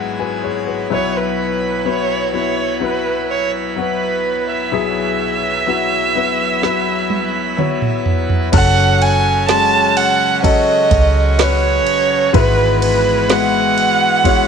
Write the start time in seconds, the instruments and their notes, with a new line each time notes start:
Already playing: grand piano G#1 G#2 G#3 E4 F#4 B4 F#5, pipe organ G#2 F#3 B3 E4 G#4
0.19 grand piano F#4 B4 G#5
0.43 grand piano G#4 C#5
0.67 grand piano F#4 B4
0.90 grand piano B1 B2 F#3 B3 E4 B4, pipe organ F#3 B4, violin C#5
1.17 violin B4
1.85 grand piano F#3 B3 E4 B4, violin C#5
2.33 grand piano F#3 B3 E4 B4, violin C#5
2.80 grand piano F#3 B3 E4 B4
2.84 violin B4
3.31 violin C#5
3.76 grand piano F#3 B3 E4 F#4, violin B4
4.51 violin E5
4.72 grand piano B1 B2 F#3 B3 E4 G#4
5.67 grand piano F#3 B3 E4 F#4
6.15 grand piano F#3 B3 E4 B4
6.62 grand piano F#3 B3 E4 B4, snare
7.10 high tom
7.57 grand piano F#3 B3 E4 C#5, mid tom
7.82 mid tom
8.06 floor tom
8.29 floor tom
8.52 fingered electric bass F#1, pipe organ C#3 F#3 C#4 F#4, grand piano C#4 F#4 A4, violin F#5, kick, crash, ride
9.02 violin G#5, ride
9.48 grand piano G#3 C#4 F#4, violin A5, snare, ride
9.97 violin F#5, ride
10.43 grand piano C#4 F#4 A4, violin D#5, kick, ride
10.91 fingered electric bass C#2, kick, ride
11.32 violin D#5
11.38 grand piano C#4 F#4 B4, violin C#5, snare, ride
11.87 fingered electric bass F#1, ride
12.33 fingered electric bass G#1, grand piano G#2 G#3 B3 E4 F#4 B4, pipe organ E3 G#3 B3, violin B4, kick, ride
12.82 violin B4, ride
13.28 grand piano G#3 B3 E4 F#4 B4, violin F#5, snare, ride
13.78 ride
14.24 grand piano G#3 B3 E4 F#4 C#5, kick, ride